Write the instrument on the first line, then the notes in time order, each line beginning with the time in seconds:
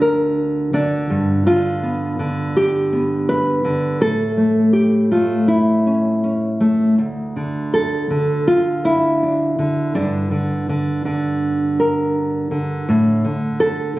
nylon-string guitar
Already playing: D2 D3 D4
0.01 A#4
0.73 D3 D4
1.10 G2
1.46 D3 F4
1.83 B3
2.19 D3
2.57 G4
2.93 B3
3.29 B4
3.64 D3
4.01 A2 A4
4.37 A3
4.73 G4
5.11 A3 F4
5.48 E4
5.87 C#4
6.24 C#4
6.60 A3
6.98 D2
7.36 D3
7.74 A4
8.10 D3
8.47 F4
8.85 E4
9.23 D4
9.59 D3
9.95 G2 D3 D4
10.31 D3
10.69 D3
11.05 D3
11.80 A#4
12.51 D3
12.89 A2
13.25 D3
13.60 A4